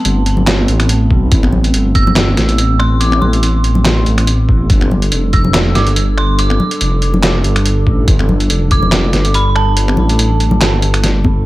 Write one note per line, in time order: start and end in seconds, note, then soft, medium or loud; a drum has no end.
0.00 4.66 A3 medium
0.00 4.66 B3 medium
0.00 4.66 C4 medium
0.00 0.22 A5 medium
0.05 0.67 G1 loud
0.05 closed hi-hat medium
0.26 closed hi-hat medium
0.37 low conga medium
0.47 snare loud
0.47 clap medium
0.47 closed hi-hat medium
0.68 1.09 A1 loud
0.68 closed hi-hat medium
0.80 finger snap medium
0.80 closed hi-hat medium
0.89 closed hi-hat medium
1.11 1.30 B1 medium
1.11 kick medium
1.32 1.72 A1 loud
1.32 kick loud
1.32 closed hi-hat medium
1.43 finger snap medium
1.43 high conga medium
1.53 low conga medium
1.64 closed hi-hat medium
1.74 2.36 G1 medium
1.74 closed hi-hat medium
1.95 2.82 E6 loud
1.95 kick medium
1.95 closed hi-hat medium
2.07 low conga medium
2.16 snare loud
2.16 clap medium
2.16 closed hi-hat medium
2.37 3.20 A1 loud
2.37 snare medium
2.37 closed hi-hat medium
2.49 closed hi-hat medium
2.58 closed hi-hat medium
2.79 3.01 C6 loud
2.79 finger snap medium
3.00 3.22 D6 loud
3.00 closed hi-hat medium
3.11 finger snap medium
3.11 high conga medium
3.21 4.05 A1 loud
3.21 4.02 C6 medium
3.21 low conga medium
3.33 closed hi-hat medium
3.43 closed hi-hat medium
3.64 closed hi-hat soft
3.75 low conga medium
3.85 snare loud
3.85 clap medium
3.85 closed hi-hat medium
4.06 4.68 A1 loud
4.06 closed hi-hat medium
4.18 finger snap medium
4.18 closed hi-hat medium
4.27 closed hi-hat medium
4.49 kick medium
4.70 5.10 G1 loud
4.70 11.42 G3 medium
4.70 11.42 D4 medium
4.70 11.42 A4 medium
4.70 kick loud
4.70 closed hi-hat medium
4.81 finger snap medium
4.81 high conga medium
4.91 low conga medium
5.02 closed hi-hat medium
5.12 5.74 F1 medium
5.12 closed hi-hat medium
5.33 5.73 E6 loud
5.33 kick medium
5.33 closed hi-hat medium
5.44 low conga medium
5.54 snare loud
5.54 clap medium
5.54 closed hi-hat medium
5.75 6.58 G1 loud
5.75 6.19 D6 loud
5.75 snare medium
5.75 closed hi-hat medium
5.87 closed hi-hat medium
5.96 closed hi-hat medium
6.18 6.27 C6 medium
6.18 finger snap medium
6.39 7.62 D6 medium
6.39 closed hi-hat medium
6.50 finger snap medium
6.50 high conga medium
6.60 low conga medium
6.71 closed hi-hat medium
6.81 7.43 F1 loud
6.81 closed hi-hat medium
7.02 closed hi-hat medium
7.14 low conga medium
7.23 snare loud
7.23 clap medium
7.23 closed hi-hat medium
7.44 7.85 G1 loud
7.44 closed hi-hat medium
7.56 finger snap medium
7.56 closed hi-hat medium
7.66 closed hi-hat medium
7.87 8.06 A1 loud
7.87 kick medium
8.08 8.49 G1 loud
8.08 kick loud
8.08 closed hi-hat medium
8.19 finger snap medium
8.19 high conga medium
8.29 low conga medium
8.40 closed hi-hat medium
8.50 9.12 F1 medium
8.50 closed hi-hat medium
8.71 9.37 D6 loud
8.71 kick medium
8.71 closed hi-hat medium
8.82 low conga medium
8.92 snare loud
8.92 clap medium
8.92 closed hi-hat medium
9.13 9.96 G1 loud
9.13 snare medium
9.13 closed hi-hat medium
9.25 closed hi-hat medium
9.34 9.48 B5 loud
9.34 closed hi-hat medium
9.49 9.56 B5 medium
9.56 11.00 A5 medium
9.56 finger snap medium
9.77 closed hi-hat medium
9.88 finger snap medium
9.88 high conga medium
9.97 10.60 A1 loud
9.97 low conga medium
10.09 closed hi-hat medium
10.19 closed hi-hat medium
10.40 closed hi-hat medium
10.51 low conga medium
10.61 11.44 G1 medium
10.61 snare loud
10.61 clap medium
10.61 closed hi-hat medium
10.82 closed hi-hat medium
10.94 finger snap medium
10.94 closed hi-hat medium
11.04 snare medium
11.04 closed hi-hat medium
11.24 kick medium
11.24 high conga medium